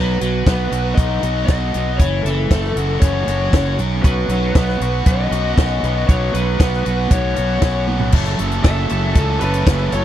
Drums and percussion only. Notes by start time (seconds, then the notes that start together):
0.21 closed hi-hat
0.47 kick, snare, closed hi-hat
0.72 closed hi-hat
0.98 kick, closed hi-hat
1.23 closed hi-hat
1.48 kick, snare, closed hi-hat
1.74 closed hi-hat
1.99 kick, closed hi-hat
2.26 closed hi-hat
2.51 kick, snare, closed hi-hat
2.64 snare
2.77 closed hi-hat
3.01 kick, closed hi-hat
3.28 closed hi-hat
3.53 kick, snare, closed hi-hat
3.79 closed hi-hat
4.04 kick, closed hi-hat
4.29 closed hi-hat
4.55 kick, snare, closed hi-hat
4.69 snare
4.81 closed hi-hat
5.06 kick, closed hi-hat
5.32 closed hi-hat
5.58 kick, snare, closed hi-hat
5.84 closed hi-hat
6.09 kick, closed hi-hat
6.34 closed hi-hat
6.60 kick, snare, closed hi-hat
6.73 snare
6.86 closed hi-hat
7.11 kick, closed hi-hat
7.36 closed hi-hat
7.62 kick, snare, closed hi-hat
7.87 high tom
8.00 floor tom
8.12 kick, crash
8.26 snare, closed hi-hat
8.39 closed hi-hat
8.52 closed hi-hat
8.64 kick, snare, closed hi-hat
8.89 closed hi-hat
9.15 kick, closed hi-hat
9.41 closed hi-hat
9.54 closed hi-hat
9.67 kick, snare, closed hi-hat
9.92 closed hi-hat